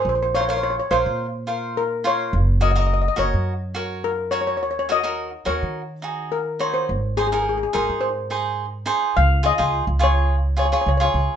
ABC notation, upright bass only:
X:1
M:4/4
L:1/16
Q:1/4=105
K:Db
V:1 name="Upright bass" clef=bass
B,,,6 B,,, B,,8- B,, | G,,,6 G,,, G,,8- G,, | E,,6 E,, E,8- E, | A,,,6 A,,, A,,8 z |
D,,3 D,,2 D,,6- D,, D,,2 D,, z |]